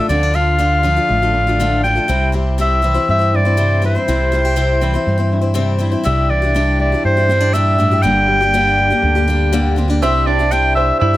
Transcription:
Already playing: F4
0.09 D2 D3 F3 C4 D4 F4 A4 D5
0.23 D4
0.34 F3 D4 F4 A4 F5
0.59 D3 F3 D4 F4 A4
0.83 F3 D4 F4 A4
0.96 D4 F4 A4
1.09 A1 A3
1.22 D4 F4 A4
1.33 A2 D4
1.47 D4 F4 A4
1.59 D3 F3 A3 D4 F4 A4
1.84 F3 D4 F4 A4 G5
1.95 D4 F4 A4
2.08 C2 C3 G3 C4 E4 C5
2.32 G3 C4 E4 G4 C5
2.58 C3 G3 C4 E4 C5 E5
2.82 E3 G3 C4 E4 C5
2.94 C4 E4 C5
3.09 G2 C4 E5
3.19 C4 E4 C5
3.33 G2 E4 D5
3.45 C4 E4 C5
3.57 C3 G3 C4 E4 C5
3.82 G3 C4 E4 C5
3.95 C4 E4 C5
4.08 C2 C3 G3 C4 E4 C5
4.32 G3 C4 E4 F4 C5
4.45 G4
4.56 C3 G3 C4 E4 C5
4.81 E3 G3 C4 E4 C5
4.94 C4 E4 C5
5.07 G2 C4
5.18 C4 E4 C5
5.32 G2 E4
5.42 C4 E4 C5
5.54 C3 G3 C4 E4 C5
5.79 G3 C4 E4 C5
5.91 C4 E4 C5
6.04 C2 C3 G3 D4 E4 G4 E5
6.30 E3 D5
6.42 D4 E4 G4
6.55 C3 G3 D4 E4 G4
6.80 C4 D5
6.92 D4 E4 G4
7.04 G2 C5
7.17 D4 E4 G4
7.29 G3 C4 D4 E4 G4
7.40 D4
7.53 A#2 C3 G3 D4 E4 G4 E5
7.78 A2 G3 D4 E4 G4
7.91 D4 E4 G4
8.02 G1 G2 D3 G3 A#3 D4 G4 G5
8.28 G3
8.41 G3 A#3 D4 G4
8.53 G2 D3 G3 A#3 D4 G4
8.78 A#3
8.90 G3 A#3 D4 G4
9.02 D2 D3
9.15 G3 A#3 D4 G4
9.28 G3 A#3 D4 G4
9.52 G2 D3 G3 A#3 D4 G4
9.76 G3 A#3 C4 D4 G4
9.88 G3 A#3 D4 G4
10.01 C2 C3 G3 C4 D4 E4 G4 E5
10.26 D4 D5
10.39 D4 E4 G4
10.51 C3 G3 D4 E4 G4 G5
10.75 C5 E5
10.99 G2 E4 E5
11.14 G4

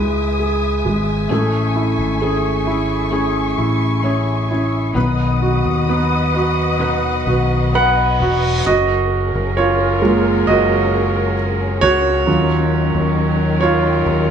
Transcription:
Already playing: C#2 C#3 G#3 E4 B4 E5 G#5 D#6
0.40 G#4
0.85 G#1 G#3
1.29 A1 A3 C#4 E4 G#4 C#6
1.76 E4
1.99 G#1
2.21 A3 C#4 E4 G#4
2.66 C#4 E4 G#4
3.11 A3 C#4 E4 G#4
3.58 A1 E4
4.03 A3 C#4 E4 G#4 C#5
4.48 C#4 E4 G#4
4.93 B1 B2 D#3 F#3 B3 D#4 B4 D#5 F#5 D#6
5.42 F#4
5.66 D#2
5.86 F#3 B3 D#4 B4
6.33 F#3 B3 D#4 F#4 B4
6.79 B2 D#3 F#3 B3 D#4 B4, reverse cymbal
7.27 B1 F#4
7.72 F#3 B3 D#4 B4 F#5
8.18 E1 F#3 B3 D#4 F#4 B4
8.65 F#1 F#3 C#4 F#4 G#4 A#4 D#5
9.35 F#1
9.57 F4 C#5
10.02 G#3 A#3 F4
10.47 F#1 F#4 D#5
11.81 C#2 F#4 C#5
12.26 D#2 D#3 F#3 C#4 F4 A#4
12.95 D#2
13.61 F4 C#5
14.06 D#2

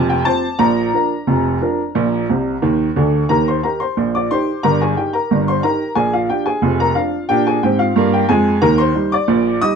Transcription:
Already playing: F1 F2
0.09 G5
0.25 F3 C4 C5 A5
0.59 A#1 A#2 A#5
0.94 F3 D4 A#4
1.27 F1 F2
1.61 F3 D4 A#4
1.95 A#1 A#2
2.29 C2 C3
2.62 D#2 D#3
2.96 D2 D3
3.29 D#2 D#3 A#4 A#5
3.48 C5 C6
3.63 D#3 D#4 G4 A#4 A#5
3.80 C5 C6
3.97 A#1 A#2
4.15 D5 D6
4.31 D#3 D#4 G4 C5 C6
4.63 G1 G2 A#4 A#5
4.81 G#4 G#5
4.97 D#3 D#4 G4 G5
5.13 A#4 A#5
5.31 G1 G2
5.48 C5 C6
5.63 D#3 D#4 G4 A#4 A#5
5.95 A#1 A#2 G#4 G#5
6.13 F4 F5
6.30 F3 D4 F4 G4 G5
6.46 G#4 G#5
6.62 F1 F2
6.80 A#4 A#5
6.95 F3 D4 F4 F5
7.29 A#2 D4 G4 G5
7.47 G#4 G#5
7.63 G#2 C4 G4 G5
7.79 F4 F5
7.96 G2 A#3
8.13 G4 G5
8.29 F2 G#3 G#4 G#5
8.62 D#2 D#3 A#4 A#5
8.78 C5 C6
8.95 G3 D#4
9.12 D5 D6
9.28 A#1 A#2
9.61 G3 D#4 D#5 D#6

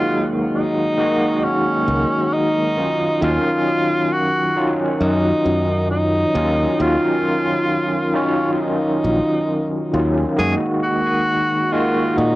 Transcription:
Already playing: D#3 F#3 G#3 A#3 F4 F#4
0.54 D#4
0.97 D#3 G#3 A#3 F#4
1.44 C#4
1.88 C#2
2.33 D#4
2.77 D#3 F#3 C#4 F4
3.21 D#2 D#3 F#3 C#4 F4 F5
4.12 F#4
4.56 D#3 F#3 C#4 F4
5.01 F#2 D#4
5.46 F#2
5.91 D#4
6.34 D#2 D#3 F#3 C#4 F4
6.78 D#2 D#3 F#3 C#4 F4
8.13 D#3 F#3 C#4 F4
8.52 F4
8.60 D#4
9.04 A#1
9.93 D#2 D#3 F#3 C#4 F4
10.36 F#2 D#3 G#3 A#3 F#4 G#4
10.83 F#4
11.72 D#3 G#3 A#3 F4 F#4
12.17 A#2 D#4

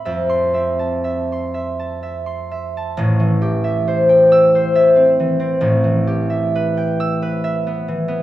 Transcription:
Already playing: C4 A5 C6
0.05 F2 E5
0.29 C6
0.54 C4 E5
0.79 A5
1.04 E5
1.32 C6
1.54 E5
1.79 A5
2.03 E5
2.26 C6
2.51 E5
2.77 A5
2.97 A1 A2
3.20 E3
3.42 G4
3.64 E5
3.88 C5
4.09 G5
4.32 E6
4.55 C5
4.75 E5
4.96 C4
5.20 E3
5.40 C4
5.61 A1 A2
5.84 E3
6.07 G4
6.30 E5
6.55 B4
6.77 G5
7.00 E6
7.22 B4
7.44 E5
7.67 B3
7.88 E3
8.08 B3

